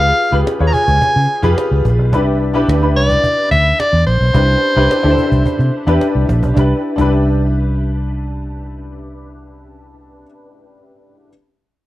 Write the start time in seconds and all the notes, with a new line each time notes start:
Already playing: C#2 F4 G4 G#4 B4 F5
0.31 C#2 F4 G4 G#4 B4
0.47 cajon slap
0.59 D#2 F4 G#4 B4 C#5
0.67 A#5
0.73 G#5, cajon bass
0.88 C#2, cajon bass
1.02 cajon bass
1.16 C#3
1.30 cajon slap
1.42 F2 F4 G4 G#4 B4, cajon bass
1.58 cajon slap
1.71 C#2
1.85 A#1, cajon bass
1.99 B1
2.13 C2 D4 E4 G4 B4, cajon bass
2.41 cajon slap
2.54 B1 D4 E4 G4 B4
2.68 D2, cajon slap
2.81 D4 E4 G4 B4
2.96 C2 D5
3.10 cajon bass
3.24 cajon bass
3.51 D2 E5, cajon bass
3.80 D5, cajon slap
3.93 E2
4.07 A#1 C5
4.21 B1
4.33 C2 D4 E4 G4 B4, cajon bass
4.76 C2 D4 E4 G4 B4
4.91 cajon slap
5.03 D2 D4 E4 G4 A4
5.11 C5
5.18 cajon bass
5.32 C2, cajon bass, cajon slap
5.46 muted fingered electric bass stroke, cajon bass, cajon slap
5.59 C3, cajon slap
5.74 cajon slap
5.87 E2 D4 E4 G4 B4, cajon slap
6.01 cajon slap
6.15 C2
6.29 A#1, cajon bass
6.43 B1, cajon bass
6.54 C2 D4 E4 G4, cajon bass, cajon slap
6.59 B4
6.96 C2 D4 E4 G4, cajon bass
7.01 B4